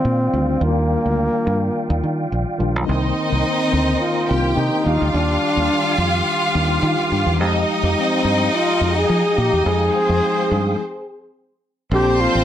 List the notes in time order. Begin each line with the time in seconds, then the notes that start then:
Already playing: D#3 G3 C4 D4 F4 D5 F5 G5
0.05 A#2
0.33 D2 D#3 G3 D4 F4
0.60 D#2 D#3 G3 A#3 D4 F4
1.06 D2
1.47 G2
1.90 D#2
2.04 D#3
2.32 A#1
2.58 A#1 D#3 G3 D4 F4
2.76 B1
2.87 C2 D#3 A#3 C4 D#4 A#4 C5 D#5 G5 C6
3.30 C2 D#3 A#3 C4 D#4
3.46 C4
3.73 D2
4.01 F4
4.28 C2 A#3 C4 D4 D#4 G4 G5
4.57 C3 D#4
4.84 D#2 D#3 G3 D4 F4 G4 F5 D6
5.02 D2
5.14 D#2 D4
5.56 D#2 D#3 G3 D4 F4
5.98 F2
6.54 D#2 D#3 G3 D4 D#4
6.62 F4
6.83 D#3
7.12 G2
7.26 E2
7.39 F2 F3 G#3 D#4 G4 D#5 F5 G5 D#6
7.83 F2 F3 G#3 D#4 G4
7.99 C4
8.25 G2
8.54 F4
8.81 F2 F3 G#3 D#4 F#4
8.89 G#4
8.98 G#4
9.10 F3
9.38 A#2 G4
9.53 E2
9.64 F2 F3 G#3 D#4 G#4
9.93 C4 C5
10.09 F2 F3 G#3 D#4 G#4
10.51 G2
11.91 A#1 F3 A#3 C4 D4 G4 A4 C5 D5 A5 C6
12.21 F4
12.35 A1